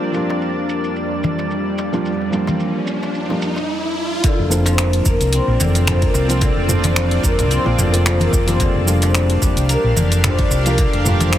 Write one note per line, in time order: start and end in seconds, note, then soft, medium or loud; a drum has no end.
0.00 3.65 F2 medium
0.00 0.11 F3 medium
0.00 0.11 G3 medium
0.00 3.66 G3 medium
0.00 0.12 A#3 medium
0.00 0.12 D4 medium
0.00 3.65 D4 medium
0.00 3.70 D4 medium
0.00 0.12 F4 medium
0.00 3.65 F4 medium
0.00 3.65 A#4 medium
0.00 2.02 D5 medium
0.00 3.70 D5 medium
0.00 riser medium
0.12 1.89 F3 medium
0.12 1.89 G3 medium
0.12 1.90 A#3 medium
0.12 1.90 D4 medium
0.12 shaker medium
0.16 1.91 F4 medium
0.29 darbuka ka soft
0.29 darbuka tek medium
0.29 shaker soft
0.42 shaker soft
0.69 shaker medium
0.84 shaker soft
0.96 shaker soft
1.24 darbuka dum medium
1.24 shaker medium
1.39 darbuka ka medium
1.39 shaker soft
1.51 shaker soft
1.78 darbuka tek medium
1.78 shaker medium
1.92 2.08 F3 medium
1.92 2.08 G3 medium
1.92 2.08 A#3 medium
1.92 2.08 D4 medium
1.92 2.09 F4 medium
1.92 darbuka ka soft
1.92 shaker soft
2.05 3.67 C5 medium
2.05 shaker soft
2.22 darbuka ka soft
2.31 3.25 F3 medium
2.31 3.26 G3 medium
2.31 3.26 A#3 medium
2.31 3.27 D4 medium
2.31 shaker medium
2.35 3.27 F4 loud
2.47 darbuka ka soft
2.47 darbuka tek medium
2.47 darbuka dum medium
2.47 shaker soft
2.60 shaker soft
2.87 shaker medium
3.03 darbuka tek soft
3.03 shaker soft
3.15 shaker soft
3.29 3.53 F3 medium
3.29 3.53 G3 medium
3.29 3.54 A#3 medium
3.29 3.54 D4 medium
3.29 3.54 F4 medium
3.29 darbuka tek medium
3.42 shaker medium
3.56 darbuka tek medium
3.56 shaker soft
4.24 5.59 D3 loud
4.24 8.57 C4 medium
4.24 11.38 D4 medium
4.24 8.56 F4 medium
4.24 6.40 A#4 medium
4.24 11.38 D5 medium
4.24 8.57 D5 medium
4.24 kick loud
4.24 closed hi-hat medium
4.24 shaker soft
4.39 5.00 F1 loud
4.49 6.25 F3 medium
4.49 6.26 A#3 medium
4.49 6.26 C4 medium
4.49 6.27 D4 medium
4.49 6.27 F4 medium
4.49 shaker medium
4.66 5.65 F3 medium
4.66 closed hi-hat soft
4.66 darbuka ka medium
4.66 darbuka tek medium
4.66 shaker soft
4.78 finger snap loud
4.78 closed hi-hat medium
4.78 shaker soft
4.93 closed hi-hat soft
5.06 5.16 F1 medium
5.06 6.01 A#3 medium
5.06 kick loud
5.06 shaker medium
5.21 5.38 C2 medium
5.21 closed hi-hat soft
5.21 shaker soft
5.33 6.29 C4 medium
5.33 closed hi-hat medium
5.33 shaker soft
5.48 5.56 A#1 medium
5.60 6.08 F1 medium
5.60 6.40 D3 medium
5.60 darbuka dum medium
5.60 shaker medium
5.75 closed hi-hat soft
5.75 darbuka ka medium
5.75 shaker soft
5.87 6.47 F3 medium
5.87 finger snap loud
5.87 closed hi-hat medium
5.87 mid tom medium
5.87 shaker soft
6.02 7.23 A#3 medium
6.02 kick loud
6.02 closed hi-hat soft
6.14 6.49 C2 loud
6.14 darbuka tek medium
6.14 shaker medium
6.28 6.44 F3 loud
6.28 6.44 A#3 medium
6.28 7.50 C4 medium
6.28 6.45 C4 medium
6.28 6.45 D4 medium
6.28 6.45 F4 loud
6.28 closed hi-hat soft
6.28 darbuka ka soft
6.28 shaker soft
6.41 7.77 D3 loud
6.41 8.58 G#4 medium
6.41 kick loud
6.41 closed hi-hat medium
6.41 shaker soft
6.57 7.17 F1 loud
6.57 darbuka ka soft
6.66 7.61 F3 medium
6.66 7.62 A#3 medium
6.66 7.62 C4 medium
6.66 7.63 D4 medium
6.66 mid tom medium
6.66 shaker medium
6.70 7.63 F4 loud
6.83 7.83 F3 medium
6.83 closed hi-hat soft
6.83 darbuka ka soft
6.83 darbuka tek medium
6.83 darbuka dum medium
6.83 shaker soft
6.96 finger snap loud
6.96 closed hi-hat medium
6.96 shaker soft
7.11 closed hi-hat soft
7.23 7.34 F1 medium
7.23 8.20 A#3 medium
7.23 kick loud
7.23 shaker medium
7.38 7.56 C2 loud
7.38 closed hi-hat soft
7.38 mid tom medium
7.38 darbuka tek medium
7.38 shaker soft
7.51 8.48 C4 medium
7.51 closed hi-hat medium
7.51 shaker soft
7.64 7.74 A#1 medium
7.64 7.89 F3 medium
7.64 7.89 A#3 medium
7.64 7.89 C4 medium
7.64 7.90 D4 medium
7.64 7.90 F4 loud
7.64 darbuka tek medium
7.78 8.27 F1 medium
7.78 8.59 D3 medium
7.78 mid tom medium
7.78 shaker medium
7.92 8.44 F3 medium
7.92 8.44 A#3 medium
7.92 8.44 C4 medium
7.92 8.44 D4 medium
7.92 8.45 F4 loud
7.92 closed hi-hat soft
7.92 shaker soft
8.06 8.65 F3 medium
8.06 finger snap loud
8.06 closed hi-hat medium
8.06 shaker soft
8.20 9.69 A#3 medium
8.20 closed hi-hat soft
8.20 darbuka ka soft
8.20 darbuka dum medium
8.33 8.68 F1 loud
8.33 kick loud
8.33 darbuka tek medium
8.33 shaker medium
8.46 8.83 F3 loud
8.46 8.84 G3 medium
8.46 8.84 A#3 medium
8.46 11.38 C4 medium
8.46 8.85 D4 medium
8.46 8.85 F4 loud
8.46 closed hi-hat soft
8.46 darbuka dum medium
8.46 shaker soft
8.59 9.95 D3 loud
8.59 11.38 D4 medium
8.59 11.38 G4 medium
8.59 11.38 A#4 medium
8.59 11.38 F5 loud
8.59 kick loud
8.59 closed hi-hat medium
8.59 shaker soft
8.75 9.36 F1 loud
8.85 10.61 F3 medium
8.85 10.62 G3 medium
8.85 10.62 A#3 medium
8.85 10.63 D4 medium
8.85 shaker medium
8.89 10.63 F4 loud
9.02 10.02 F3 medium
9.02 closed hi-hat soft
9.02 darbuka ka soft
9.02 darbuka tek medium
9.02 shaker soft
9.15 finger snap loud
9.15 closed hi-hat medium
9.15 shaker soft
9.30 closed hi-hat soft
9.42 9.52 F1 medium
9.42 10.02 G3 medium
9.42 kick loud
9.42 shaker medium
9.57 9.75 C2 medium
9.57 closed hi-hat soft
9.57 shaker soft
9.69 10.66 A#3 medium
9.69 closed hi-hat soft
9.69 shaker soft
9.84 9.92 A#1 medium
9.96 10.45 F1 medium
9.96 10.78 D3 medium
9.96 darbuka dum loud
9.96 shaker medium
10.12 closed hi-hat soft
10.12 darbuka ka medium
10.12 shaker soft
10.24 10.83 F3 medium
10.24 finger snap loud
10.24 closed hi-hat medium
10.24 mid tom medium
10.24 shaker soft
10.39 10.83 G3 medium
10.39 kick loud
10.39 closed hi-hat soft
10.51 10.86 C2 loud
10.51 darbuka tek medium
10.51 shaker medium
10.65 10.81 F3 medium
10.65 10.81 G3 medium
10.65 10.81 A#3 medium
10.65 11.38 A#3 medium
10.65 10.81 D4 medium
10.65 10.82 F4 loud
10.65 closed hi-hat soft
10.65 darbuka ka soft
10.65 shaker soft
10.78 11.38 D3 loud
10.78 kick loud
10.78 closed hi-hat medium
10.78 shaker soft
10.93 11.38 F1 loud
10.93 closed hi-hat soft
10.93 darbuka ka soft
11.04 11.38 F3 loud
11.04 11.38 G3 medium
11.04 11.38 A#3 medium
11.04 11.38 D4 medium
11.04 mid tom medium
11.04 shaker medium
11.08 11.38 F4 loud
11.20 11.38 F3 medium
11.20 closed hi-hat soft
11.20 darbuka ka soft
11.20 darbuka tek medium
11.20 darbuka dum medium
11.20 shaker soft
11.33 finger snap loud
11.33 closed hi-hat medium
11.33 shaker soft